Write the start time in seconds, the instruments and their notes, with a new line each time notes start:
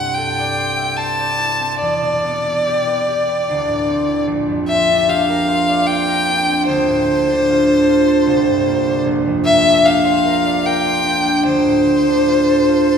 Already playing: harp C2 G2 C4 E4 A4 C5 E5, violin F#5
0.14 harp A4, violin G5
0.39 harp D5
0.58 harp C5
0.77 harp E5
0.97 harp C5, violin A5
1.20 harp D5
1.40 harp E4
1.60 harp C4
1.80 harp E2, violin D5
2.02 harp B2
2.24 harp B3
2.44 harp E4
2.67 harp G4
2.87 harp B4
3.08 harp G4
3.29 harp B4
3.50 harp D2
3.68 harp A2
3.88 harp C4
4.08 harp E4
4.27 harp A#1
4.48 harp F2
4.68 harp C4, violin E5
4.90 harp D4
5.08 harp G4, violin F5
5.29 harp A#4
5.48 harp C5
5.68 harp D5
5.87 harp C5, violin G5
6.06 harp A#4
6.28 harp D4
6.49 harp C4
6.66 harp D2, violin C5
6.90 harp A2
7.10 harp A3
7.30 harp D4
7.49 harp F4
7.69 harp A4
7.89 harp F4
8.08 harp A4
8.26 harp C2
8.47 harp G2
8.66 harp A#3
8.86 harp D4
9.05 harp A#1
9.26 harp F2
9.45 harp A#3, violin E5
9.65 harp D4
9.85 harp G4, violin F5
10.05 harp C5
10.25 harp A#4
10.45 harp D5
10.66 harp A#4, violin G5
10.86 harp C5
11.04 harp D4
11.25 harp A#3
11.45 harp D2, violin C5
11.66 harp A2
11.86 harp A3
12.08 harp D4
12.28 harp F4
12.48 harp A4
12.68 harp F4
12.90 harp A4